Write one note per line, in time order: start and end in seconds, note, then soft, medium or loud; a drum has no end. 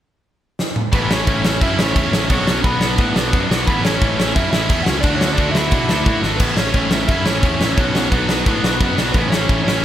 0.59 snare medium
0.76 mid tom medium
0.92 1.24 A1 loud
0.92 1.11 A2 medium
0.92 1.10 E3 loud
0.92 1.09 A3 medium
0.92 1.10 B3 medium
0.92 1.09 C#4 loud
0.92 1.08 E4 loud
0.92 1.11 B4 medium
0.92 kick loud
0.92 crash medium
1.10 1.24 A2 medium
1.10 1.25 E3 medium
1.10 1.25 A3 medium
1.10 1.26 C#4 medium
1.10 1.59 C#4 medium
1.10 1.26 E4 medium
1.10 1.62 C#5 medium
1.10 snare loud
1.25 1.59 A1 loud
1.25 1.44 A2 medium
1.25 1.43 E3 medium
1.25 1.43 A3 medium
1.25 1.43 C#4 medium
1.25 1.42 E4 medium
1.25 kick loud
1.25 crash medium
1.43 1.61 A2 medium
1.43 1.61 E3 medium
1.43 1.62 A3 loud
1.43 1.62 C#4 loud
1.43 1.62 E4 loud
1.43 snare loud
1.61 1.76 F#2 loud
1.61 1.79 A2 medium
1.61 1.79 E3 medium
1.61 1.78 A3 medium
1.61 1.78 C#4 medium
1.61 1.76 E4 loud
1.61 1.79 E4 medium
1.61 1.80 E5 medium
1.61 kick loud
1.61 crash medium
1.77 1.93 A1 medium
1.77 1.94 A2 medium
1.77 1.94 E3 medium
1.77 1.95 A3 medium
1.77 1.96 C#4 medium
1.77 1.96 E4 loud
1.77 2.30 C#5 medium
1.77 snare loud
1.82 2.28 C#4 medium
1.95 2.11 E2 medium
1.95 2.14 A2 loud
1.95 2.14 E3 medium
1.95 2.13 A3 medium
1.95 2.13 C#4 loud
1.95 2.11 E4 loud
1.95 kick loud
1.95 crash medium
2.12 2.28 A1 medium
2.12 2.28 A2 medium
2.12 2.29 E3 medium
2.12 2.29 A3 medium
2.12 2.29 C#4 loud
2.12 2.29 E4 loud
2.12 snare loud
2.29 2.61 B1 loud
2.29 2.48 B2 medium
2.29 2.48 F#3 loud
2.29 2.47 B3 loud
2.29 2.47 D4 loud
2.29 2.46 F#4 loud
2.29 2.63 C#5 medium
2.29 kick loud
2.29 crash medium
2.34 2.64 C#4 medium
2.47 2.63 B2 medium
2.47 2.64 F#3 medium
2.47 2.64 B3 medium
2.47 2.65 D4 medium
2.47 2.65 F#4 medium
2.47 snare loud
2.64 2.95 B1 medium
2.64 2.82 B2 medium
2.64 2.81 F#3 medium
2.64 2.81 B3 medium
2.64 3.47 B3 medium
2.64 2.81 D4 medium
2.64 2.79 F#4 medium
2.64 3.45 B4 medium
2.64 kick loud
2.64 crash medium
2.80 2.97 B2 medium
2.80 2.97 F#3 medium
2.80 2.98 B3 loud
2.80 2.99 D4 loud
2.80 2.99 F#4 loud
2.80 snare loud
2.98 3.14 A2 medium
2.98 3.15 B2 medium
2.98 3.15 F#3 medium
2.98 3.15 B3 medium
2.98 3.14 D4 medium
2.98 3.13 F#4 medium
2.98 kick loud
2.98 crash medium
3.14 3.31 B1 medium
3.14 3.31 B2 medium
3.14 3.32 F#3 medium
3.14 3.32 B3 medium
3.14 3.33 D4 medium
3.14 3.34 F#4 loud
3.14 snare loud
3.32 3.49 F#2 medium
3.32 3.51 B2 medium
3.32 3.50 F#3 loud
3.32 3.50 B3 loud
3.32 3.49 D4 loud
3.32 3.49 F#4 loud
3.32 kick loud
3.32 crash medium
3.49 3.65 B1 medium
3.49 3.66 B2 medium
3.49 3.67 F#3 medium
3.49 3.66 B3 medium
3.49 3.66 D4 medium
3.49 3.66 F#4 medium
3.49 snare loud
3.67 3.98 A1 loud
3.67 3.85 A2 medium
3.67 3.85 E3 medium
3.67 3.85 A3 loud
3.67 3.84 B3 medium
3.67 3.83 C#4 loud
3.67 3.82 E4 loud
3.67 3.84 B4 medium
3.67 kick loud
3.67 crash medium
3.84 4.00 A2 medium
3.84 4.00 E3 medium
3.84 4.02 A3 medium
3.84 4.02 C#4 medium
3.84 4.33 C#4 medium
3.84 4.02 E4 medium
3.84 4.35 C#5 medium
3.84 snare loud
4.01 4.33 A1 loud
4.01 4.20 A2 medium
4.01 4.19 E3 medium
4.01 4.19 A3 medium
4.01 4.17 C#4 loud
4.01 4.17 E4 medium
4.01 kick loud
4.01 crash medium
4.18 4.33 A2 medium
4.18 4.34 E3 medium
4.18 4.35 A3 medium
4.18 4.34 C#4 loud
4.18 4.35 E4 loud
4.18 snare loud
4.34 4.51 F#2 loud
4.34 4.54 A2 medium
4.34 4.52 E3 medium
4.34 4.54 A3 medium
4.34 4.52 C#4 medium
4.34 4.51 E4 loud
4.34 4.50 E5 loud
4.34 kick loud
4.34 crash medium
4.39 4.53 E4 medium
4.51 4.68 A1 medium
4.51 4.68 A2 medium
4.51 4.69 E3 medium
4.51 4.71 A3 medium
4.51 4.71 C#4 medium
4.51 4.71 E4 medium
4.51 4.82 E4 medium
4.51 4.87 E5 medium
4.51 snare loud
4.69 4.85 E2 medium
4.69 4.88 A2 medium
4.69 4.88 E3 loud
4.69 4.88 A3 loud
4.69 4.86 C#4 loud
4.69 4.86 E4 loud
4.69 kick loud
4.69 crash medium
4.83 5.02 C#2 medium
4.83 4.88 F#5 loud
4.83 snare loud
4.87 5.04 A2 medium
4.87 5.03 E3 medium
4.87 5.04 A3 medium
4.87 5.03 C#4 medium
4.87 5.03 E4 loud
4.87 4.93 F#4 medium
5.00 5.35 D2 loud
5.00 5.21 D3 loud
5.00 5.20 D4 medium
5.00 5.16 D5 medium
5.00 kick loud
5.00 crash medium
5.05 5.21 A3 medium
5.05 5.20 D4 loud
5.05 5.20 F#4 loud
5.16 5.33 C#5 medium
5.21 5.37 D3 medium
5.21 5.39 A3 medium
5.21 5.37 C#4 medium
5.21 5.39 D4 medium
5.21 5.39 F#4 medium
5.21 snare loud
5.33 5.54 D4 medium
5.33 5.51 D5 medium
5.37 5.69 D2 medium
5.37 5.56 D3 medium
5.37 5.56 A3 medium
5.37 5.55 D4 medium
5.37 5.54 F#4 loud
5.37 kick loud
5.37 crash medium
5.51 5.72 F#4 loud
5.51 6.18 E5 loud
5.51 snare loud
5.56 5.71 D3 medium
5.56 5.72 A3 medium
5.56 5.72 D4 loud
5.56 6.20 E4 medium
5.71 5.88 B2 loud
5.71 5.90 D3 medium
5.71 5.90 A3 medium
5.71 5.89 D4 loud
5.71 5.89 F#4 loud
5.71 kick loud
5.71 crash medium
5.88 6.05 D2 medium
5.88 6.05 D3 medium
5.88 6.06 A3 medium
5.88 6.06 D4 loud
5.88 6.07 F#4 medium
5.88 snare loud
6.06 6.22 A2 medium
6.06 6.25 D3 medium
6.06 6.23 A3 loud
6.06 6.24 D4 loud
6.06 6.22 F#4 loud
6.06 kick loud
6.06 crash medium
6.22 6.39 G#1 loud
6.22 6.40 D3 medium
6.22 6.40 A3 medium
6.22 6.40 D4 medium
6.22 6.40 F#4 medium
6.22 snare medium
6.37 6.72 A1 loud
6.37 6.58 A2 medium
6.37 6.57 E3 loud
6.37 6.55 B3 medium
6.37 6.56 B4 medium
6.37 kick loud
6.37 crash loud
6.37 crash medium
6.41 6.57 A3 loud
6.41 6.56 C#4 medium
6.41 6.56 E4 loud
6.55 6.73 A2 medium
6.55 6.74 E3 medium
6.55 6.74 A3 medium
6.55 6.75 C#4 medium
6.55 6.75 E4 medium
6.55 7.07 C#5 loud
6.55 snare loud
6.60 7.07 C#4 medium
6.74 7.06 A1 loud
6.74 6.92 A2 medium
6.74 6.92 E3 loud
6.74 6.92 A3 medium
6.74 6.91 C#4 medium
6.74 6.90 E4 medium
6.74 kick loud
6.74 crash medium
6.91 7.07 A2 medium
6.91 7.07 E3 medium
6.91 7.09 A3 loud
6.91 7.09 C#4 loud
6.91 7.10 E4 loud
6.91 snare loud
7.08 7.25 F#2 medium
7.08 7.27 A2 medium
7.08 7.26 E3 medium
7.08 7.26 A3 medium
7.08 7.25 C#4 loud
7.08 7.24 E4 medium
7.08 7.26 E4 medium
7.08 7.24 E5 loud
7.08 kick loud
7.08 crash medium
7.25 7.42 A1 medium
7.25 7.41 A2 medium
7.25 7.42 E3 medium
7.25 7.43 A3 medium
7.25 7.43 C#4 medium
7.25 7.43 E4 medium
7.25 7.76 C#5 loud
7.25 snare loud
7.30 7.76 C#4 medium
7.42 7.59 E2 medium
7.42 7.62 A2 medium
7.42 7.61 E3 medium
7.42 7.61 A3 medium
7.42 7.59 C#4 loud
7.42 7.58 E4 loud
7.42 kick loud
7.42 crash medium
7.60 7.76 A1 medium
7.60 7.77 A2 medium
7.60 7.77 E3 medium
7.60 7.77 A3 medium
7.60 7.77 C#4 medium
7.60 7.76 E4 loud
7.60 snare loud
7.77 8.09 B1 loud
7.77 7.96 B2 loud
7.77 7.95 F#3 medium
7.77 7.94 B3 loud
7.77 8.11 C#4 medium
7.77 7.94 D4 loud
7.77 7.93 F#4 loud
7.77 8.09 C#5 medium
7.77 kick loud
7.77 crash medium
7.94 8.11 B2 medium
7.94 8.11 F#3 medium
7.94 8.13 B3 medium
7.94 8.12 D4 medium
7.94 8.14 F#4 medium
7.94 snare loud
8.11 8.43 B1 loud
8.11 8.29 B2 medium
8.11 8.29 F#3 medium
8.11 8.94 B3 medium
8.11 8.28 B3 medium
8.11 8.27 D4 medium
8.11 8.27 F#4 medium
8.11 8.93 B4 medium
8.11 kick loud
8.11 crash medium
8.28 8.45 B2 medium
8.28 8.45 F#3 medium
8.28 8.45 B3 medium
8.28 8.46 D4 loud
8.28 8.46 F#4 loud
8.28 snare loud
8.46 8.62 A2 loud
8.46 8.65 B2 medium
8.46 8.65 F#3 medium
8.46 8.64 B3 loud
8.46 8.63 D4 medium
8.46 8.63 F#4 medium
8.46 kick loud
8.46 crash medium
8.63 8.79 B1 medium
8.63 8.79 B2 medium
8.63 8.81 F#3 medium
8.63 8.82 B3 medium
8.63 8.82 D4 medium
8.63 8.83 F#4 loud
8.63 snare loud
8.80 8.96 F#2 medium
8.80 8.99 B2 medium
8.80 8.99 F#3 medium
8.80 8.97 B3 loud
8.80 8.97 D4 loud
8.80 8.97 F#4 loud
8.80 kick loud
8.80 crash medium
8.98 9.13 B1 medium
8.98 9.15 B2 medium
8.98 9.15 F#3 medium
8.98 9.14 B3 medium
8.98 9.14 D4 medium
8.98 9.14 F#4 medium
8.98 snare loud
9.12 9.46 A1 loud
9.12 9.34 A2 loud
9.12 9.31 B3 medium
9.12 9.30 B4 loud
9.12 kick loud
9.12 crash medium
9.16 9.33 E3 loud
9.16 9.32 A3 loud
9.16 9.32 C#4 loud
9.16 9.31 E4 loud
9.30 9.50 A3 medium
9.30 9.64 C#4 medium
9.30 9.50 C#4 medium
9.30 9.51 E4 medium
9.30 9.63 C#5 loud
9.30 snare loud
9.34 9.48 A2 medium
9.34 9.49 E3 medium
9.49 9.81 A1 medium
9.49 9.68 A2 medium
9.49 9.68 E3 medium
9.49 9.67 A3 medium
9.49 9.66 C#4 medium
9.49 9.66 E4 medium
9.49 kick loud
9.49 crash medium
9.64 9.85 C#4 medium
9.64 9.84 C#4 loud
9.64 9.85 E4 loud
9.64 9.85 C#5 loud
9.68 9.82 A2 medium
9.68 9.83 E3 medium
9.68 9.83 A3 loud
9.68 snare loud